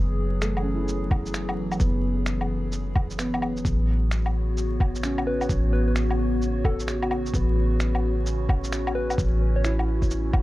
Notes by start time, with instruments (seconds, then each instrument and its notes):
Already playing: 808-style bass F#1, ambient pad E3 F#3 G#4, felt piano B3
0.42 felt piano A3, finger snap, shaker
0.57 low woodblock
0.62 felt piano C#4
0.74 felt piano E4
0.88 shaker
1.11 kick, low woodblock
1.26 shaker
1.34 finger snap, shaker
1.49 low woodblock
1.72 low woodblock, shaker
1.80 808-style bass F#1, felt piano B3, kick, shaker
2.26 finger snap, shaker
2.41 low woodblock
2.72 shaker
2.96 kick, low woodblock
3.10 shaker
3.18 felt piano B3, finger snap, shaker
3.34 low woodblock
3.42 low woodblock
3.57 shaker
3.65 808-style bass A1, ambient pad C#3 B3 F#4, synth texture C#5, kick, shaker
4.11 finger snap, shaker
4.26 low woodblock
4.57 shaker
4.80 kick, low woodblock
4.95 shaker
5.03 felt piano C#4, finger snap, shaker
5.18 low woodblock
5.27 soft synth lead B4
5.41 low woodblock, shaker
5.49 808-style bass A1, kick, shaker
5.73 soft synth lead B4
5.87 soft synth lead B4
5.96 finger snap, shaker
6.10 low woodblock
6.42 shaker
6.65 soft synth lead A4, kick, low woodblock
6.80 shaker
6.88 finger snap, shaker
7.03 low woodblock
7.11 low woodblock
7.26 shaker
7.33 808-style bass A1, felt piano B3, ambient pad C#4, kick, shaker
7.80 finger snap, shaker
7.95 low woodblock
8.26 shaker
8.49 kick, low woodblock
8.64 shaker
8.73 finger snap, shaker
8.87 low woodblock
8.95 soft synth lead B4
9.10 low woodblock, shaker
9.18 808-style bass A1, kick, shaker
9.56 soft synth lead C#5
9.64 felt piano E4, soft synth lead C#5, finger snap, shaker
9.79 low woodblock
10.02 kick, shaker
10.11 shaker
10.33 kick, low woodblock